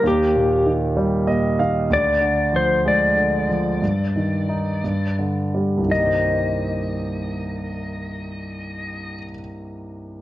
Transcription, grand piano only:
X:1
M:6/8
L:1/8
Q:3/8=58
K:Cm
V:1 name="Grand piano" clef=bass
E,, B,, E, G, [B,,e] [E,f] | D,, D, F, A, D, F, | G,, E, E G,, D, G, | [C,,G,,E,B,Gc]6- |
[C,,G,,E,B,Gc]6 |]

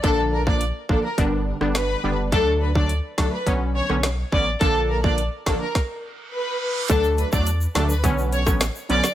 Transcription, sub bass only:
X:1
M:4/4
L:1/16
Q:1/4=105
K:D
V:1 name="Sub bass" clef=bass
_B,,,4- B,,, z A,,, z G,,,3 G,,,3 F,,,2 | D,,4- D,, z C,, z B,,,3 B,,,3 A,,,2 | _B,,,4- B,,, z A,,, z8 z | D,,3 E,,3 D,,2 B,,,3 A,,,2 z B,,, z |]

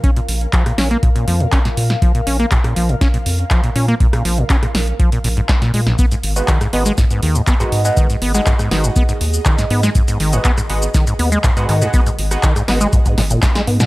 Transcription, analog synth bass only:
X:1
M:4/4
L:1/8
Q:1/4=121
K:Abdor
V:1 name="Analog synth bass" clef=bass
z B,,, z B,,, z F,, z B,, | z B,,, z B,,, z F,, z B,, | z B,,, z B,,, z B,,, z B,, | z A,,, z A,,, z E,, z A,, |
z A,,, z A,,, z E,, z A,, | z A,,, z A,,, z E,, z A,, | z A,,, z A,,, z A,,, z A,, |]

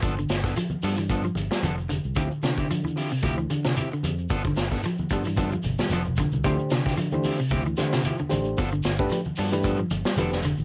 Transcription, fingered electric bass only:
X:1
M:4/4
L:1/16
Q:"Swing 16ths" 1/4=112
K:Gmix
V:1 name="Fingered electric bass" clef=bass
G,,,2 G,,,2 z2 G,,4 G,,, z F,,,3 C,, | D,, z D,6 D,,2 D,2 z2 F,,2 | G,,,2 G,,,2 z2 G,,4 G,,, z F,,,3 C,, | D,, z D,6 D,,2 D,2 z2 A,,,2 |
G,,,2 G,,,2 z2 G,,4 G,,, z F,,,3 A,,, |]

